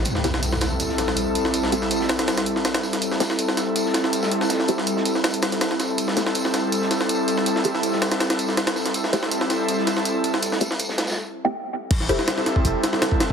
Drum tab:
CC |--------------------------------|--------------------------------|--------------------------------|--------------------------------|
HH |x---x---x-x-x---x---x-x-x---x---|x---x---x---x-x-x-x-x---x-x---x-|x---x---x-x-x---x---x-x-x---x---|x-x-x---x---x---x-x-x-x-x---x---|
TB |x---x---x---x---x---x---x---x---|x---x---x---x---x---x---x---x---|x---x---x---x---x---x---x-x---x-|x---x---x---x---x---x---x---x---|
SD |--o-o-o---o-o-----o-o-o-------o-|--o---o---o-o-o-o-o---o-o-o-o-o-|--o-o-o---o-o-----o-o-o---o---o-|o-o---o---o---o-o---o-o-o-o-o---|
BD |--------------------------------|--------------------------------|--------------------------------|--------------------------------|

CC |--------------------------------|--------------------------------|--------------------------------|--------------------------------|
HH |x---x---x-x-x---x---x-x-x---x---|x---x---x---x-x-x-x-x---x-x---x-|x---x---x-x-x---x---x-x-x---x---|x---x---x---x-------------------|
TB |x---x---x---x---x---x---x---x---|x---x---x---x---x---x---x---x---|x---x---x---x---x---x---x---x---|x---x---x---x-xx----------------|
SD |--o-o-o---o-o-----o-o-o-------o-|--o---o---o-o-o-o-o---o-o-o-o-o-|--o-o-o---o-o-----o-o-o-------o-|--o---o---o-o-oo----------------|
BD |--------------------------------|--------------------------------|--------------------------------|--------------------------------|

CC |x-------------------------------|
HH |x---x---x---x---x---x---x---x---|
TB |--------------------------------|
SD |--o-o-o-o-o-o-------o-o-o---o---|
BD |o-------------o-----------o-----|